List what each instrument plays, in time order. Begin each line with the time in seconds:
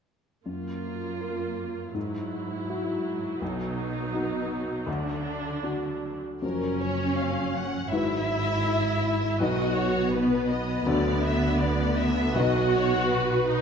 0.45 cello section F#2, grand piano F#2, viola section A#3 F4
1.21 grand piano F4 A#4
1.94 grand piano G#2, cello section G#2, viola section F#3 E4
2.69 grand piano E4 F#4
3.42 grand piano B1, cello section B2, viola section D#4
4.13 grand piano D#4 F#4
4.86 grand piano D2, cello section D3, viola section D4
5.63 grand piano D4 F#4
6.42 double bass section F#1, grand piano F#2 F3 F#3 A#4, cello section F#2, viola section C#4, violin section A#4
6.82 violin section C#5
7.18 violin section F5
7.56 violin section F#5
7.91 double bass section G#1, grand piano G#2 F#3 E4 B4, cello section G#2, viola section E4, violin section E5
9.40 grand piano B1 F#3 D#4 B4, double bass section B1, cello section B2, viola section F#4, violin section D#5
9.77 violin section C#5
10.14 viola section B3, violin section B4
10.50 violin section D#5
10.86 grand piano D2 F#3 D4 A4, double bass section D2, cello section D3, violin section D5
11.24 violin section E5
11.59 violin section D5
11.98 violin section E5
12.35 grand piano B1 F#3 D#4 B4, double bass section B1, cello section B2, viola section F#4, violin section D#5
12.75 violin section C#5
13.11 violin section B4
13.48 viola section D#4